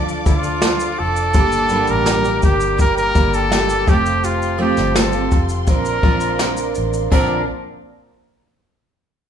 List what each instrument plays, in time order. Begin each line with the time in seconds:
Already playing: fingered electric bass D2, steel-string acoustic guitar F3 D4 F4 A4, string section A4 D5 F5 D6
0.09 shaker
0.25 fingered electric bass D2, steel-string acoustic guitar F3 D4 F4 A4, trumpet F4, kick, shaker
0.44 shaker
0.61 steel-string acoustic guitar F3 D4 F4 A4, snare, shaker
0.80 shaker
0.99 fingered electric bass F1, trumpet A4
1.16 shaker
1.34 fingered electric bass G1, steel-string acoustic guitar G3 A#3 D4 G4, string section A#3 G5, kick, shaker
1.52 shaker
1.69 steel-string acoustic guitar G2 D3 G3 A#3 D4 G4, shaker
1.87 fingered electric bass A1, trumpet A#4, shaker
2.06 snare, shaker
2.23 steel-string acoustic guitar G3 A#3 D4 G4, shaker
2.42 fingered electric bass G1, trumpet G4, kick, shaker
2.61 shaker
2.77 steel-string acoustic guitar G3 A#3 D4 G4, trumpet A#4, kick, shaker
2.97 trumpet A#4, shaker
3.14 fingered electric bass G1, steel-string acoustic guitar G3 A#3 D4 G4, kick, shaker
3.34 trumpet A4, shaker
3.50 steel-string acoustic guitar G3 A#3 D4 G4, snare, shaker
3.70 shaker
3.86 fingered electric bass F1, steel-string acoustic guitar F3 A3 C4 F4 G4, trumpet G4, string section A4 F5 C6, kick, shaker
4.06 shaker
4.24 trumpet F4, shaker
4.42 shaker
4.58 steel-string acoustic guitar F3 A3 C4 F4 G4, trumpet G4
4.77 fingered electric bass G1, snare, shaker
4.95 trumpet A4, snare, shaker
5.13 steel-string acoustic guitar C4 F4 G4, shaker
5.32 fingered electric bass F1, kick, shaker
5.49 shaker
5.67 fingered electric bass A#1, steel-string acoustic guitar F3 C4 D4 A#4, string section A#4 D5, trumpet A#4, kick, shaker
5.85 shaker
6.03 fingered electric bass A#1, steel-string acoustic guitar F3 C4 D4 A#4, kick
6.20 shaker
6.38 steel-string acoustic guitar F3 C4 D4 A#4, snare, shaker
6.57 shaker
6.75 fingered electric bass A1, shaker
6.93 shaker
7.11 fingered electric bass A#1, steel-string acoustic guitar A#2 D3 F3 C4 D4 A#4, string section A#3 A#4 C5 D5 F5, trumpet A#4, kick, crash